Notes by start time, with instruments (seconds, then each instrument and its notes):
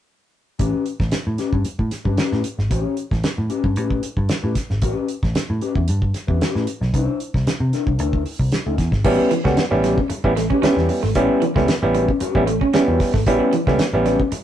0.59 picked electric bass A1, clean electric guitar C#4 G4 B4, kick, closed hi-hat
0.86 closed hi-hat
1.00 picked electric bass A1, muted clean electric guitar stroke, kick, snare
1.12 muted picked electric bass stroke, snare, closed hi-hat
1.26 picked electric bass A2, muted clean electric guitar stroke
1.38 clean electric guitar C#4 G4 B4, snare, closed hi-hat
1.52 picked electric bass G2, muted clean electric guitar stroke, kick
1.64 muted clean electric guitar stroke, muted picked electric bass stroke, closed hi-hat
1.79 picked electric bass A2, muted clean electric guitar stroke, kick
1.91 snare, closed hi-hat
2.05 picked electric bass G2, clean electric guitar C#4 G4 B4, kick
2.17 clean electric guitar C#4 G4 B4, snare, closed hi-hat
2.32 picked electric bass A2, snare
2.44 closed hi-hat
2.58 picked electric bass G#1, muted clean electric guitar stroke, snare
2.70 picked electric bass A1, clean electric guitar C#4 G4 C#5, kick, closed hi-hat
2.97 closed hi-hat
3.11 picked electric bass A1, muted clean electric guitar stroke, kick, snare
3.24 muted picked electric bass stroke, snare, closed hi-hat
3.37 picked electric bass A2, muted clean electric guitar stroke
3.50 clean electric guitar C#4 G4 B4, closed hi-hat
3.64 picked electric bass G2, muted clean electric guitar stroke, kick
3.76 picked electric bass A2, clean electric guitar C#4 G4 B4, closed hi-hat
3.90 kick
4.03 muted clean electric guitar stroke, closed hi-hat
4.17 picked electric bass G2, muted clean electric guitar stroke, kick
4.29 muted clean electric guitar stroke, snare, closed hi-hat
4.43 picked electric bass A2, clean electric guitar C#4 G4 B4
4.55 muted clean electric guitar stroke, kick, snare, closed hi-hat
4.70 picked electric bass G#1, muted clean electric guitar stroke, snare
4.82 picked electric bass A1, clean electric guitar C#4 G4 B4, kick, closed hi-hat
5.08 closed hi-hat
5.23 picked electric bass A1, muted clean electric guitar stroke, kick, snare
5.35 muted picked electric bass stroke, snare, closed hi-hat
5.49 picked electric bass A2, muted clean electric guitar stroke
5.61 clean electric guitar C#4 G4 B4, closed hi-hat
5.75 picked electric bass E2, muted clean electric guitar stroke, kick
5.88 picked electric bass G2, muted clean electric guitar stroke, closed hi-hat
6.01 muted clean electric guitar stroke, kick
6.14 snare, closed hi-hat
6.27 picked electric bass E2, clean electric guitar C#4 G4 B4, kick
6.40 clean electric guitar C#4 G4 B4, snare, closed hi-hat
6.55 picked electric bass A2, snare
6.67 muted clean electric guitar stroke, closed hi-hat
6.81 picked electric bass B1, muted clean electric guitar stroke, snare
6.93 picked electric bass C2, clean electric guitar D4 E4 C5, kick, closed hi-hat
7.20 closed hi-hat
7.34 picked electric bass C2, muted clean electric guitar stroke, kick, snare
7.47 muted picked electric bass stroke, snare, closed hi-hat
7.60 picked electric bass C3, muted clean electric guitar stroke
7.73 clean electric guitar D4 E4 A#4, snare, closed hi-hat
7.87 picked electric bass C2, muted clean electric guitar stroke, kick
7.98 picked electric bass D2, clean electric guitar D4 E4 A#4, closed hi-hat
8.13 kick
8.25 muted clean electric guitar stroke, open hi-hat
8.39 picked electric bass C2, muted clean electric guitar stroke, kick
8.52 muted clean electric guitar stroke, snare, closed hi-hat
8.66 picked electric bass D2, clean electric guitar D4 E4 A#4
8.78 picked electric bass E2, muted clean electric guitar stroke, kick, snare, closed hi-hat
8.92 picked electric bass G#1, muted clean electric guitar stroke, kick, snare
9.04 picked electric bass A1, clav G3 B3 C#4 E4, clean electric guitar C#4 G4 B4, kick, crash
9.19 muted clean electric guitar stroke
9.31 clean electric guitar E3, closed hi-hat
9.44 picked electric bass C#2, clav G3 B3 C#4 F#4, clean electric guitar A3, kick, snare
9.57 muted picked electric bass stroke, snare, closed hi-hat
9.71 picked electric bass A1, clav G3 B3 C#4 E4
9.84 clean electric guitar G3 C#4 G4 B4, snare, closed hi-hat
9.98 muted clean electric guitar stroke, kick
10.10 clav C#4 E4, muted picked electric bass stroke, muted clean electric guitar stroke, closed hi-hat
10.24 picked electric bass A1, clav G3 B3 C#4 E4, kick
10.36 clean electric guitar A3, clav C#4 E4, snare, closed hi-hat
10.50 clean electric guitar C#4 G4 B4, clav C#4 E4, kick
10.62 clav G3 B3 C#4 E4, clean electric guitar C#4 G4 B4, muted picked electric bass stroke, snare, closed hi-hat
10.77 picked electric bass E2, snare
10.89 muted clean electric guitar stroke, open hi-hat
11.03 picked electric bass G#1, clean electric guitar A3, muted clean electric guitar stroke, snare
11.15 picked electric bass A1, clav G3 B3 C#4 E4, clean electric guitar C#4 G4 C#5, kick, closed hi-hat
11.29 muted clean electric guitar stroke
11.42 clean electric guitar E3, closed hi-hat
11.56 picked electric bass C#2, clav G3 B3 C#4 E4, clean electric guitar A3, kick, snare
11.68 muted picked electric bass stroke, snare, closed hi-hat
11.82 picked electric bass A1, clav G3 B3 C#4 E4, muted clean electric guitar stroke
11.94 clean electric guitar G3 C#4 G4 B4, closed hi-hat
12.08 muted clean electric guitar stroke, kick
12.20 clean electric guitar C#4 G4 B4, clav C#4 E4, muted clean electric guitar stroke, muted picked electric bass stroke, closed hi-hat
12.35 picked electric bass A1, clav G3 B3 C#4 E4, kick
12.47 clean electric guitar A3, clav E4, muted clean electric guitar stroke, closed hi-hat
12.61 clean electric guitar C#4, clav C#4 E4, muted clean electric guitar stroke, kick
12.73 clav G3 B3 C#4 E4, clean electric guitar C#4, muted picked electric bass stroke, snare, closed hi-hat
12.88 picked electric bass E2, clean electric guitar C#4 G4 B4
13.00 muted clean electric guitar stroke, kick, snare, open hi-hat
13.14 picked electric bass G#1, clean electric guitar A3, muted clean electric guitar stroke, kick, snare
13.26 picked electric bass A1, clav G3 B3 C#4 E4, clean electric guitar C#4 G4 B4, kick, closed hi-hat
13.40 muted clean electric guitar stroke
13.53 clean electric guitar E3, closed hi-hat
13.67 picked electric bass C#2, clav G3 B3 C#4 E4, clean electric guitar A3, kick, snare
13.79 muted picked electric bass stroke, snare, closed hi-hat
13.93 picked electric bass A1, clav G3 B3 C#4 E4
14.06 clean electric guitar G3 C#4 G4 B4, snare, closed hi-hat
14.20 muted clean electric guitar stroke, kick
14.32 clav C#4 E4, muted picked electric bass stroke, muted clean electric guitar stroke, closed hi-hat